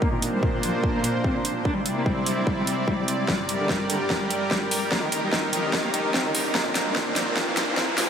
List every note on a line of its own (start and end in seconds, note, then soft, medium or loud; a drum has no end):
0.02 1.64 A#2 medium
0.02 1.64 A#3 medium
0.02 0.11 A#3 medium
0.02 1.64 D4 medium
0.02 1.64 C5 medium
0.02 kick medium
0.12 0.21 A#2 medium
0.22 0.31 A#2 medium
0.22 closed hi-hat medium
0.33 0.41 G3 medium
0.43 0.52 A#2 medium
0.43 kick medium
0.53 0.62 A#2 medium
0.63 0.72 F3 medium
0.63 closed hi-hat medium
0.74 0.82 A#2 medium
0.84 0.92 A#2 medium
0.84 kick medium
0.94 1.02 A#3 medium
1.04 1.13 A#2 medium
1.04 closed hi-hat medium
1.15 1.23 A#2 medium
1.24 1.33 C4 medium
1.24 kick medium
1.35 1.43 A#2 medium
1.45 1.54 A#2 medium
1.45 closed hi-hat medium
1.55 1.64 A#2 medium
1.65 3.27 C3 medium
1.65 3.27 C4 medium
1.65 1.74 D4 loud
1.65 3.27 E4 medium
1.65 4.88 D5 medium
1.65 kick medium
1.76 1.84 G3 medium
1.86 1.94 G3 medium
1.86 closed hi-hat medium
1.96 2.04 A#3 medium
2.06 2.15 G3 medium
2.06 kick medium
2.16 2.25 G3 medium
2.26 2.35 G3 medium
2.26 closed hi-hat medium
2.37 2.45 G3 medium
2.47 2.56 G3 medium
2.47 kick loud
2.57 2.66 G3 medium
2.67 2.76 G3 medium
2.67 closed hi-hat medium
2.78 2.86 G3 medium
2.88 2.96 G3 medium
2.88 kick loud
2.98 3.06 G3 medium
3.08 3.17 G3 medium
3.08 closed hi-hat medium
3.19 3.27 G3 medium
3.28 4.90 G3 medium
3.28 3.37 G3 medium
3.28 6.52 G4 medium
3.28 6.52 A#4 medium
3.28 kick medium
3.28 snare soft
3.28 riser medium
3.39 3.47 G2 medium
3.49 3.58 G2 medium
3.49 closed hi-hat medium
3.59 3.68 D3 medium
3.69 3.78 G2 medium
3.69 kick medium
3.69 snare soft
3.80 3.88 G2 medium
3.90 3.99 D3 medium
3.90 closed hi-hat medium
4.00 4.09 G2 medium
4.10 4.19 G2 medium
4.10 kick medium
4.10 snare soft
4.21 4.29 G3 medium
4.30 4.39 G2 medium
4.30 closed hi-hat medium
4.41 4.49 G2 medium
4.51 4.60 G3 medium
4.51 kick loud
4.51 snare medium
4.61 4.70 G2 medium
4.71 4.80 G2 medium
4.71 open hi-hat medium
4.82 4.90 G2 medium
4.92 6.53 D#3 medium
4.92 5.01 A#3 loud
4.92 6.53 D#4 medium
4.92 kick loud
4.92 snare medium
5.02 5.11 D#3 medium
5.12 5.21 D#3 medium
5.12 closed hi-hat medium
5.23 5.31 G3 medium
5.33 5.41 D#3 medium
5.33 kick medium
5.33 snare medium
5.43 5.51 D#3 medium
5.53 5.62 F3 medium
5.53 closed hi-hat medium
5.63 5.72 D#3 medium
5.73 5.82 D#3 medium
5.73 kick loud
5.73 snare medium
5.84 5.92 A#3 medium
5.94 6.03 D#3 medium
5.94 closed hi-hat medium
6.04 6.13 D#3 medium
6.14 6.23 C4 medium
6.14 kick loud
6.14 snare medium
6.25 6.33 D#3 medium
6.35 6.43 D#3 medium
6.35 open hi-hat loud
6.45 6.53 D#3 medium
6.55 8.10 A#2 medium
6.55 8.10 A#3 medium
6.55 6.64 A#3 loud
6.55 8.10 C4 medium
6.55 8.10 D4 medium
6.55 kick loud
6.55 snare medium
6.66 6.74 A#2 medium
6.75 6.84 A#2 medium
6.75 snare medium
6.75 closed hi-hat medium
6.86 6.94 G3 medium
6.96 7.05 A#2 medium
6.96 kick loud
6.96 snare medium
7.06 7.15 A#2 medium
7.16 7.25 F3 medium
7.16 snare medium
7.16 closed hi-hat medium
7.27 7.35 A#2 medium
7.37 7.45 A#2 medium
7.37 kick loud
7.37 snare medium
7.47 7.55 A#3 medium
7.57 7.66 A#2 medium
7.57 snare medium
7.57 closed hi-hat medium
7.68 7.76 A#2 medium
7.77 7.86 C4 medium
7.77 kick loud
7.77 snare medium
7.88 7.96 A#2 medium
7.98 8.07 A#2 medium
7.98 snare medium
7.98 open hi-hat loud